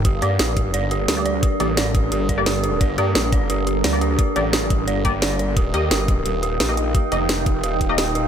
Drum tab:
HH |xxxxxxxx|xxxxxxxx|xxxxxxxx|xxxxxxxx|
SD |--o---o-|--o---o-|--o---o-|--o---o-|
BD |o--o----|o--o-o--|o--o----|o--o-o--|

HH |xxxxxxxx|xxxxxxxx|
SD |--o---o-|--o---o-|
BD |o--o----|o--o-o--|